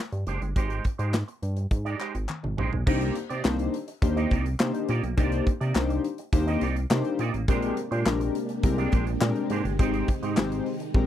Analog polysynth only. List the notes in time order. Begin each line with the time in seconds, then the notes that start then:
2.86 A#3 D4 D#4 G4 C5
3.44 A#3 D4 D#4 G4 C5
4.02 A#3 D4 D#4 G4 C5
4.60 A#3 D4 D#4 G4 C5
5.17 A#3 D4 D#4 G4 C5
5.75 A#3 D4 D#4 G4 C5
6.33 A#3 D4 D#4 G4 C5
6.90 A#3 D4 D#4 G4 C5
7.48 G#3 C4 D4 G4 A#4
8.05 G#3 C4 D4 G4 A#4
8.64 G#3 C4 D4 G4 A#4
9.21 G#3 C4 D4 G4 A#4
9.79 G#3 C4 D#4 G4 C5
10.37 G#3 C4 D#4 G4 C5
10.94 G#3 C4 D#4 G4 A#4